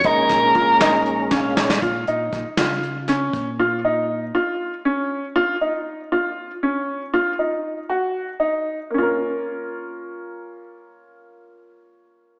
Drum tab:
HH |x-x-x-x-x-----|x-x-x-x-x-x-x-|--------------|--------------|
SD |--o---o---o-oo|------o---o---|--------------|--------------|
BD |o-o-o-----o---|o---o-------o-|--------------|--------------|

HH |--------------|--------------|--------------|
SD |--------------|--------------|--------------|
BD |--------------|--------------|--------------|